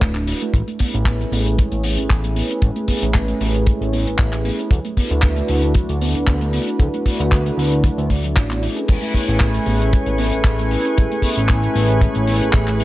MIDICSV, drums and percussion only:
0, 0, Header, 1, 2, 480
1, 0, Start_track
1, 0, Key_signature, 3, "major"
1, 0, Tempo, 521739
1, 495, Time_signature, 4, 2, 24, 8
1, 11814, End_track
2, 0, Start_track
2, 0, Title_t, "Drums"
2, 15, Note_on_c, 9, 36, 122
2, 17, Note_on_c, 9, 42, 94
2, 19, Note_on_c, 9, 39, 106
2, 107, Note_off_c, 9, 36, 0
2, 109, Note_off_c, 9, 42, 0
2, 111, Note_off_c, 9, 39, 0
2, 136, Note_on_c, 9, 39, 37
2, 142, Note_on_c, 9, 42, 58
2, 228, Note_off_c, 9, 39, 0
2, 234, Note_off_c, 9, 42, 0
2, 252, Note_on_c, 9, 46, 102
2, 344, Note_off_c, 9, 46, 0
2, 382, Note_on_c, 9, 42, 56
2, 474, Note_off_c, 9, 42, 0
2, 493, Note_on_c, 9, 36, 107
2, 500, Note_on_c, 9, 42, 81
2, 585, Note_off_c, 9, 36, 0
2, 592, Note_off_c, 9, 42, 0
2, 624, Note_on_c, 9, 42, 48
2, 716, Note_off_c, 9, 42, 0
2, 729, Note_on_c, 9, 46, 110
2, 739, Note_on_c, 9, 36, 65
2, 821, Note_off_c, 9, 46, 0
2, 831, Note_off_c, 9, 36, 0
2, 863, Note_on_c, 9, 42, 46
2, 955, Note_off_c, 9, 42, 0
2, 971, Note_on_c, 9, 36, 120
2, 972, Note_on_c, 9, 42, 89
2, 976, Note_on_c, 9, 39, 108
2, 1063, Note_off_c, 9, 36, 0
2, 1064, Note_off_c, 9, 42, 0
2, 1068, Note_off_c, 9, 39, 0
2, 1113, Note_on_c, 9, 42, 48
2, 1205, Note_off_c, 9, 42, 0
2, 1218, Note_on_c, 9, 46, 103
2, 1310, Note_off_c, 9, 46, 0
2, 1348, Note_on_c, 9, 42, 49
2, 1440, Note_off_c, 9, 42, 0
2, 1458, Note_on_c, 9, 42, 95
2, 1462, Note_on_c, 9, 36, 103
2, 1550, Note_off_c, 9, 42, 0
2, 1554, Note_off_c, 9, 36, 0
2, 1580, Note_on_c, 9, 42, 55
2, 1672, Note_off_c, 9, 42, 0
2, 1689, Note_on_c, 9, 46, 106
2, 1781, Note_off_c, 9, 46, 0
2, 1825, Note_on_c, 9, 42, 48
2, 1917, Note_off_c, 9, 42, 0
2, 1933, Note_on_c, 9, 39, 100
2, 1934, Note_on_c, 9, 42, 85
2, 1935, Note_on_c, 9, 36, 104
2, 2025, Note_off_c, 9, 39, 0
2, 2026, Note_off_c, 9, 42, 0
2, 2027, Note_off_c, 9, 36, 0
2, 2061, Note_on_c, 9, 42, 55
2, 2153, Note_off_c, 9, 42, 0
2, 2174, Note_on_c, 9, 46, 97
2, 2266, Note_off_c, 9, 46, 0
2, 2300, Note_on_c, 9, 42, 51
2, 2392, Note_off_c, 9, 42, 0
2, 2409, Note_on_c, 9, 42, 94
2, 2412, Note_on_c, 9, 36, 111
2, 2501, Note_off_c, 9, 42, 0
2, 2504, Note_off_c, 9, 36, 0
2, 2539, Note_on_c, 9, 42, 50
2, 2631, Note_off_c, 9, 42, 0
2, 2649, Note_on_c, 9, 46, 110
2, 2652, Note_on_c, 9, 36, 57
2, 2741, Note_off_c, 9, 46, 0
2, 2744, Note_off_c, 9, 36, 0
2, 2786, Note_on_c, 9, 42, 50
2, 2878, Note_off_c, 9, 42, 0
2, 2891, Note_on_c, 9, 39, 105
2, 2892, Note_on_c, 9, 42, 97
2, 2896, Note_on_c, 9, 36, 107
2, 2983, Note_off_c, 9, 39, 0
2, 2984, Note_off_c, 9, 42, 0
2, 2988, Note_off_c, 9, 36, 0
2, 3019, Note_on_c, 9, 42, 52
2, 3111, Note_off_c, 9, 42, 0
2, 3134, Note_on_c, 9, 46, 98
2, 3226, Note_off_c, 9, 46, 0
2, 3260, Note_on_c, 9, 42, 51
2, 3352, Note_off_c, 9, 42, 0
2, 3372, Note_on_c, 9, 42, 91
2, 3377, Note_on_c, 9, 36, 103
2, 3464, Note_off_c, 9, 42, 0
2, 3469, Note_off_c, 9, 36, 0
2, 3512, Note_on_c, 9, 42, 52
2, 3604, Note_off_c, 9, 42, 0
2, 3618, Note_on_c, 9, 46, 99
2, 3710, Note_off_c, 9, 46, 0
2, 3747, Note_on_c, 9, 42, 58
2, 3839, Note_off_c, 9, 42, 0
2, 3849, Note_on_c, 9, 39, 106
2, 3852, Note_on_c, 9, 42, 102
2, 3855, Note_on_c, 9, 36, 118
2, 3941, Note_off_c, 9, 39, 0
2, 3944, Note_off_c, 9, 42, 0
2, 3947, Note_off_c, 9, 36, 0
2, 3981, Note_on_c, 9, 39, 37
2, 3984, Note_on_c, 9, 42, 58
2, 4073, Note_off_c, 9, 39, 0
2, 4076, Note_off_c, 9, 42, 0
2, 4095, Note_on_c, 9, 46, 88
2, 4187, Note_off_c, 9, 46, 0
2, 4223, Note_on_c, 9, 42, 53
2, 4315, Note_off_c, 9, 42, 0
2, 4331, Note_on_c, 9, 36, 96
2, 4331, Note_on_c, 9, 42, 90
2, 4423, Note_off_c, 9, 36, 0
2, 4423, Note_off_c, 9, 42, 0
2, 4460, Note_on_c, 9, 42, 54
2, 4552, Note_off_c, 9, 42, 0
2, 4573, Note_on_c, 9, 46, 108
2, 4574, Note_on_c, 9, 36, 62
2, 4665, Note_off_c, 9, 46, 0
2, 4666, Note_off_c, 9, 36, 0
2, 4696, Note_on_c, 9, 42, 53
2, 4788, Note_off_c, 9, 42, 0
2, 4802, Note_on_c, 9, 39, 112
2, 4810, Note_on_c, 9, 42, 89
2, 4812, Note_on_c, 9, 36, 121
2, 4894, Note_off_c, 9, 39, 0
2, 4902, Note_off_c, 9, 42, 0
2, 4904, Note_off_c, 9, 36, 0
2, 4936, Note_on_c, 9, 42, 59
2, 5028, Note_off_c, 9, 42, 0
2, 5045, Note_on_c, 9, 46, 94
2, 5137, Note_off_c, 9, 46, 0
2, 5178, Note_on_c, 9, 42, 52
2, 5270, Note_off_c, 9, 42, 0
2, 5284, Note_on_c, 9, 42, 102
2, 5291, Note_on_c, 9, 36, 101
2, 5376, Note_off_c, 9, 42, 0
2, 5383, Note_off_c, 9, 36, 0
2, 5420, Note_on_c, 9, 42, 56
2, 5512, Note_off_c, 9, 42, 0
2, 5533, Note_on_c, 9, 46, 102
2, 5625, Note_off_c, 9, 46, 0
2, 5660, Note_on_c, 9, 42, 49
2, 5752, Note_off_c, 9, 42, 0
2, 5771, Note_on_c, 9, 39, 108
2, 5772, Note_on_c, 9, 42, 104
2, 5773, Note_on_c, 9, 36, 110
2, 5863, Note_off_c, 9, 39, 0
2, 5864, Note_off_c, 9, 42, 0
2, 5865, Note_off_c, 9, 36, 0
2, 5899, Note_on_c, 9, 42, 62
2, 5991, Note_off_c, 9, 42, 0
2, 6007, Note_on_c, 9, 46, 98
2, 6099, Note_off_c, 9, 46, 0
2, 6138, Note_on_c, 9, 42, 54
2, 6230, Note_off_c, 9, 42, 0
2, 6252, Note_on_c, 9, 36, 101
2, 6254, Note_on_c, 9, 42, 102
2, 6344, Note_off_c, 9, 36, 0
2, 6346, Note_off_c, 9, 42, 0
2, 6383, Note_on_c, 9, 42, 50
2, 6475, Note_off_c, 9, 42, 0
2, 6492, Note_on_c, 9, 46, 109
2, 6493, Note_on_c, 9, 36, 60
2, 6584, Note_off_c, 9, 46, 0
2, 6585, Note_off_c, 9, 36, 0
2, 6629, Note_on_c, 9, 42, 52
2, 6721, Note_off_c, 9, 42, 0
2, 6732, Note_on_c, 9, 39, 105
2, 6734, Note_on_c, 9, 36, 105
2, 6745, Note_on_c, 9, 42, 103
2, 6824, Note_off_c, 9, 39, 0
2, 6826, Note_off_c, 9, 36, 0
2, 6837, Note_off_c, 9, 42, 0
2, 6865, Note_on_c, 9, 42, 57
2, 6957, Note_off_c, 9, 42, 0
2, 6983, Note_on_c, 9, 46, 94
2, 7075, Note_off_c, 9, 46, 0
2, 7103, Note_on_c, 9, 42, 57
2, 7195, Note_off_c, 9, 42, 0
2, 7211, Note_on_c, 9, 36, 101
2, 7216, Note_on_c, 9, 42, 98
2, 7303, Note_off_c, 9, 36, 0
2, 7308, Note_off_c, 9, 42, 0
2, 7344, Note_on_c, 9, 42, 48
2, 7436, Note_off_c, 9, 42, 0
2, 7453, Note_on_c, 9, 36, 58
2, 7456, Note_on_c, 9, 46, 99
2, 7545, Note_off_c, 9, 36, 0
2, 7548, Note_off_c, 9, 46, 0
2, 7582, Note_on_c, 9, 42, 57
2, 7674, Note_off_c, 9, 42, 0
2, 7695, Note_on_c, 9, 39, 109
2, 7698, Note_on_c, 9, 36, 121
2, 7700, Note_on_c, 9, 42, 105
2, 7787, Note_off_c, 9, 39, 0
2, 7790, Note_off_c, 9, 36, 0
2, 7792, Note_off_c, 9, 42, 0
2, 7825, Note_on_c, 9, 39, 36
2, 7831, Note_on_c, 9, 42, 56
2, 7917, Note_off_c, 9, 39, 0
2, 7923, Note_off_c, 9, 42, 0
2, 7938, Note_on_c, 9, 46, 87
2, 8030, Note_off_c, 9, 46, 0
2, 8069, Note_on_c, 9, 42, 59
2, 8161, Note_off_c, 9, 42, 0
2, 8173, Note_on_c, 9, 42, 88
2, 8179, Note_on_c, 9, 36, 108
2, 8183, Note_on_c, 9, 49, 70
2, 8265, Note_off_c, 9, 42, 0
2, 8271, Note_off_c, 9, 36, 0
2, 8275, Note_off_c, 9, 49, 0
2, 8301, Note_on_c, 9, 42, 56
2, 8393, Note_off_c, 9, 42, 0
2, 8412, Note_on_c, 9, 36, 62
2, 8415, Note_on_c, 9, 46, 107
2, 8504, Note_off_c, 9, 36, 0
2, 8507, Note_off_c, 9, 46, 0
2, 8545, Note_on_c, 9, 42, 51
2, 8637, Note_off_c, 9, 42, 0
2, 8647, Note_on_c, 9, 39, 120
2, 8653, Note_on_c, 9, 36, 127
2, 8657, Note_on_c, 9, 42, 92
2, 8739, Note_off_c, 9, 39, 0
2, 8745, Note_off_c, 9, 36, 0
2, 8749, Note_off_c, 9, 42, 0
2, 8779, Note_on_c, 9, 42, 59
2, 8871, Note_off_c, 9, 42, 0
2, 8889, Note_on_c, 9, 46, 86
2, 8981, Note_off_c, 9, 46, 0
2, 9031, Note_on_c, 9, 42, 56
2, 9123, Note_off_c, 9, 42, 0
2, 9135, Note_on_c, 9, 42, 106
2, 9139, Note_on_c, 9, 36, 108
2, 9227, Note_off_c, 9, 42, 0
2, 9231, Note_off_c, 9, 36, 0
2, 9259, Note_on_c, 9, 42, 53
2, 9351, Note_off_c, 9, 42, 0
2, 9367, Note_on_c, 9, 46, 102
2, 9459, Note_off_c, 9, 46, 0
2, 9497, Note_on_c, 9, 42, 49
2, 9589, Note_off_c, 9, 42, 0
2, 9608, Note_on_c, 9, 36, 125
2, 9608, Note_on_c, 9, 42, 93
2, 9610, Note_on_c, 9, 39, 127
2, 9700, Note_off_c, 9, 36, 0
2, 9700, Note_off_c, 9, 42, 0
2, 9702, Note_off_c, 9, 39, 0
2, 9745, Note_on_c, 9, 42, 58
2, 9837, Note_off_c, 9, 42, 0
2, 9853, Note_on_c, 9, 46, 91
2, 9945, Note_off_c, 9, 46, 0
2, 9983, Note_on_c, 9, 42, 55
2, 10075, Note_off_c, 9, 42, 0
2, 10098, Note_on_c, 9, 42, 102
2, 10104, Note_on_c, 9, 36, 108
2, 10190, Note_off_c, 9, 42, 0
2, 10196, Note_off_c, 9, 36, 0
2, 10227, Note_on_c, 9, 42, 53
2, 10319, Note_off_c, 9, 42, 0
2, 10325, Note_on_c, 9, 36, 60
2, 10332, Note_on_c, 9, 46, 120
2, 10417, Note_off_c, 9, 36, 0
2, 10424, Note_off_c, 9, 46, 0
2, 10465, Note_on_c, 9, 42, 49
2, 10557, Note_off_c, 9, 42, 0
2, 10567, Note_on_c, 9, 39, 108
2, 10575, Note_on_c, 9, 42, 93
2, 10578, Note_on_c, 9, 36, 121
2, 10659, Note_off_c, 9, 39, 0
2, 10667, Note_off_c, 9, 42, 0
2, 10670, Note_off_c, 9, 36, 0
2, 10701, Note_on_c, 9, 42, 50
2, 10793, Note_off_c, 9, 42, 0
2, 10816, Note_on_c, 9, 46, 99
2, 10908, Note_off_c, 9, 46, 0
2, 10944, Note_on_c, 9, 42, 51
2, 11036, Note_off_c, 9, 42, 0
2, 11053, Note_on_c, 9, 36, 118
2, 11059, Note_on_c, 9, 42, 94
2, 11145, Note_off_c, 9, 36, 0
2, 11151, Note_off_c, 9, 42, 0
2, 11177, Note_on_c, 9, 42, 58
2, 11269, Note_off_c, 9, 42, 0
2, 11292, Note_on_c, 9, 46, 106
2, 11384, Note_off_c, 9, 46, 0
2, 11426, Note_on_c, 9, 42, 58
2, 11518, Note_off_c, 9, 42, 0
2, 11527, Note_on_c, 9, 39, 116
2, 11536, Note_on_c, 9, 36, 119
2, 11536, Note_on_c, 9, 42, 105
2, 11619, Note_off_c, 9, 39, 0
2, 11628, Note_off_c, 9, 36, 0
2, 11628, Note_off_c, 9, 42, 0
2, 11661, Note_on_c, 9, 39, 39
2, 11663, Note_on_c, 9, 42, 63
2, 11753, Note_off_c, 9, 39, 0
2, 11755, Note_off_c, 9, 42, 0
2, 11775, Note_on_c, 9, 46, 107
2, 11814, Note_off_c, 9, 46, 0
2, 11814, End_track
0, 0, End_of_file